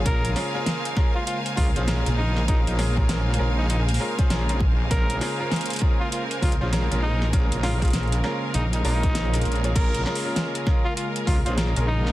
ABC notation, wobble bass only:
X:1
M:4/4
L:1/16
Q:"Swing 16ths" 1/4=99
K:Bbm
V:1 name="Wobble bass" clef=bass
B,,,2 z8 D,, B,,,2 B,,,3- | B,,, B,,,3 B,,,2 B,,,4 z2 B,,,4 | B,,,2 z8 D,, B,,,2 B,,,3- | B,,, B,,,3 B,,,2 z2 B,,,2 B,,,4 B,,,2 |
B,,,2 z8 D,, B,,,2 B,,,3 |]